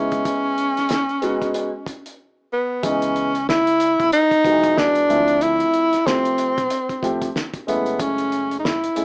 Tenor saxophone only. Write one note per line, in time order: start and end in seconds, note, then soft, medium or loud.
0.00 2.20 C#4 medium
2.53 2.87 B3 medium
2.85 3.49 C#4 medium
3.49 4.09 E4 loud
4.13 4.79 D#4 loud
4.78 5.44 D4 loud
5.42 6.08 E4 loud
6.07 7.35 C4 medium
7.69 8.03 B3 medium
8.01 8.59 C#4 medium
8.59 8.67 D#4 medium
8.65 9.05 E4 medium